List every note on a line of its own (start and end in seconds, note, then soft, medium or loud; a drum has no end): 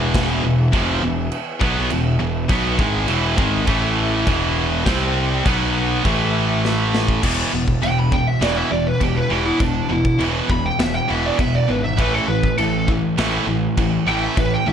0.00 0.40 E1 loud
0.00 0.42 E2 medium
0.00 0.43 B2 medium
0.00 0.43 E3 loud
0.00 3.63 E3 medium
0.00 3.63 B3 medium
0.00 3.63 G#4 medium
0.00 3.63 E5 medium
0.14 kick loud
0.14 snare loud
0.14 china medium
0.43 0.72 E1 medium
0.43 0.67 E2 medium
0.43 0.67 B2 medium
0.72 1.00 F1 medium
0.72 1.01 F2 medium
0.72 1.01 C3 loud
0.72 1.02 F3 loud
0.72 kick loud
0.72 china medium
1.02 1.30 E1 medium
1.02 1.26 E2 medium
1.02 1.26 B2 medium
1.32 china medium
1.60 1.89 B1 loud
1.60 1.89 B2 medium
1.60 1.90 F#3 loud
1.60 1.90 B3 loud
1.60 kick loud
1.90 2.19 E1 medium
1.90 2.14 E2 medium
1.90 2.14 B2 medium
1.90 china medium
2.19 2.48 E1 medium
2.19 2.43 E2 medium
2.19 2.44 B2 medium
2.49 2.77 B1 medium
2.49 2.78 B2 medium
2.49 2.78 F#3 loud
2.49 2.78 B3 loud
2.49 kick loud
2.49 china medium
2.78 3.07 G#1 loud
2.78 3.07 G#2 loud
2.78 3.07 D#3 loud
2.78 3.08 G#3 loud
2.78 kick loud
3.07 3.36 E1 loud
3.07 3.36 E2 loud
3.07 3.37 B2 loud
3.07 3.37 E3 loud
3.07 china medium
3.37 3.66 G#1 loud
3.37 3.66 G#2 medium
3.37 3.66 D#3 medium
3.37 3.67 G#3 medium
3.37 kick loud
3.66 4.23 A1 loud
3.66 4.25 A2 medium
3.66 4.84 E3 medium
3.66 4.25 E3 loud
3.66 4.26 A3 medium
3.66 4.26 A3 loud
3.66 4.25 A4 medium
3.66 4.84 E5 medium
3.66 kick loud
3.66 china medium
4.25 4.82 E1 loud
4.25 4.84 E2 loud
4.25 4.84 B2 loud
4.25 4.85 E3 loud
4.25 4.85 B3 medium
4.25 4.85 G#4 medium
4.25 kick loud
4.25 china medium
4.85 5.41 C2 loud
4.85 5.43 C3 medium
4.85 5.44 G3 loud
4.85 5.44 G3 medium
4.85 5.44 C4 loud
4.85 5.45 C4 medium
4.85 5.44 C5 medium
4.85 5.44 G5 medium
4.85 kick loud
4.85 snare loud
4.85 china medium
5.44 6.00 B1 medium
5.44 6.03 B2 loud
5.44 6.03 F#3 loud
5.44 6.04 F#3 medium
5.44 6.04 B3 loud
5.44 6.04 B3 medium
5.44 6.04 B4 medium
5.44 6.04 F#5 medium
5.44 kick loud
5.44 china medium
6.03 7.19 A1 loud
6.03 7.21 A2 medium
6.03 7.22 E3 loud
6.03 7.22 E3 medium
6.03 7.22 A3 medium
6.03 7.22 A3 loud
6.03 7.22 A4 medium
6.03 7.22 E5 medium
6.03 kick loud
6.03 china medium
6.65 snare medium
6.95 snare loud
7.08 kick loud
7.22 7.43 E1 medium
7.22 7.50 E2 medium
7.22 7.51 B2 medium
7.22 7.51 E3 loud
7.22 kick loud
7.22 crash loud
7.22 china medium
7.52 7.73 E1 medium
7.52 7.79 E2 medium
7.52 7.79 B2 medium
7.68 kick medium
7.82 8.22 E1 medium
7.82 8.09 E2 medium
7.82 8.09 B2 medium
7.82 7.98 G5 loud
7.82 china medium
7.98 8.12 B5 medium
8.12 8.39 E2 medium
8.12 8.39 B2 medium
8.12 8.27 G5 medium
8.12 kick loud
8.27 8.42 E5 medium
8.41 8.61 E1 medium
8.41 8.69 E2 medium
8.41 8.70 B2 loud
8.41 8.70 E3 loud
8.41 8.57 D5 medium
8.41 snare loud
8.41 china medium
8.57 8.71 E5 medium
8.71 8.92 E1 medium
8.71 8.98 E2 medium
8.71 8.98 B2 medium
8.71 8.86 D5 medium
8.87 9.01 B4 medium
9.00 9.21 E1 medium
9.00 9.27 E2 medium
9.00 9.28 B2 medium
9.00 9.16 G4 medium
9.00 kick medium
9.00 china medium
9.16 9.30 B4 medium
9.29 9.51 E1 medium
9.29 9.58 E2 loud
9.29 9.58 B2 medium
9.29 9.59 E3 medium
9.29 9.45 G4 medium
9.45 9.60 E4 medium
9.60 9.80 E1 medium
9.60 9.87 E2 medium
9.60 9.87 B2 medium
9.60 9.90 D4 medium
9.60 kick loud
9.60 china medium
9.89 10.11 E1 medium
9.89 10.17 E2 medium
9.89 10.17 B2 medium
9.89 10.19 E4 loud
10.05 kick loud
10.19 10.40 E1 medium
10.19 10.47 E2 loud
10.19 10.48 B2 loud
10.19 10.48 E3 loud
10.19 china medium
10.49 10.69 E1 loud
10.49 10.77 E2 medium
10.49 10.77 B2 medium
10.49 10.65 B5 medium
10.49 kick loud
10.66 10.80 G5 medium
10.79 10.99 E1 medium
10.79 11.06 E2 medium
10.79 11.06 B2 medium
10.79 10.94 E5 medium
10.79 snare loud
10.79 china medium
10.95 11.10 G5 medium
11.08 11.30 E1 medium
11.08 11.37 E2 medium
11.08 11.37 B2 loud
11.08 11.38 E3 loud
11.08 11.26 E5 loud
11.26 11.40 D5 loud
11.38 11.59 E1 medium
11.38 11.66 E2 medium
11.38 11.66 B2 medium
11.38 11.55 E5 medium
11.38 kick medium
11.38 china medium
11.55 11.70 D5 loud
11.69 11.99 G#1 medium
11.69 11.96 E2 medium
11.69 11.96 B2 medium
11.69 11.84 B4 medium
11.84 11.99 E5 medium
11.98 12.19 A1 medium
11.98 12.27 A2 medium
11.98 12.27 E3 medium
11.98 12.27 A3 loud
11.98 12.14 B4 loud
11.98 kick loud
11.98 china medium
12.15 12.28 A4 loud
12.28 12.48 A1 medium
12.28 12.55 A2 medium
12.28 12.55 E3 medium
12.28 12.57 B4 medium
12.43 kick medium
12.58 12.98 A1 medium
12.58 12.85 A2 medium
12.58 12.85 E3 medium
12.58 12.87 A4 loud
12.58 china medium
12.88 13.15 A2 medium
12.88 13.15 E3 medium
12.88 kick loud
13.18 13.38 A1 medium
13.18 13.46 A2 medium
13.18 13.46 E3 medium
13.18 13.46 A3 loud
13.18 snare loud
13.18 china medium
13.47 13.67 A1 medium
13.47 13.75 A2 medium
13.47 13.75 E3 medium
13.77 13.97 A1 medium
13.77 14.04 A2 medium
13.77 14.05 E3 medium
13.77 kick medium
13.77 china medium
14.07 14.27 A1 medium
14.07 14.35 A2 medium
14.07 14.35 E3 loud
14.07 14.36 A3 loud
14.07 14.23 G5 loud
14.23 14.37 E5 loud
14.37 14.57 A1 medium
14.37 14.64 A2 medium
14.37 14.64 E3 medium
14.37 14.52 B4 loud
14.37 kick loud
14.37 china medium
14.54 14.68 G5 loud
14.67 14.73 A1 loud
14.67 14.73 A2 medium
14.67 14.73 E3 medium
14.67 14.73 E5 medium